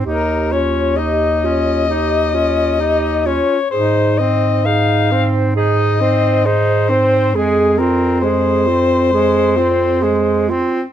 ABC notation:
X:1
M:4/4
L:1/8
Q:1/4=66
K:Ab
V:1 name="Soprano saxophone"
B d e4- e d | c e f z e2 c2 | A B c4- c z |]
V:2 name="Clarinet"
G F G F G F G F | A c A c A c A c | A F A F A F A F |]
V:3 name="Tenor saxophone"
E D E D E D E D | E C E C E C E C | A, C A, C A, C A, C |]
V:4 name="Bass clarinet" clef=bass
E,,6- E,, z | A,,8 | F,,6- F,, z |]